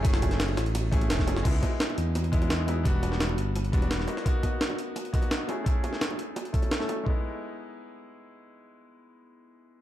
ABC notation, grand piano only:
X:1
M:4/4
L:1/16
Q:1/4=171
K:E
V:1 name="Grand piano"
[A,CEG]8- [A,CEG]2 [A,CEG]4 [A,CEG]2 | [G,B,DE]8- [G,B,DE]2 [G,B,DE]4 [G,B,DE]2 | [=G,B,=DF]8- [G,B,DF]2 [G,B,DF]4 [^A,B,^DF]2 | [^A,B,DF]8- [A,B,DF]2 [A,B,DF]4 [=A,CEG]2 |
[A,CEG]8- [A,CEG]2 [A,CEA]3 [A,CEA]3 | [G,B,DE]16- | [G,B,DE]16 |]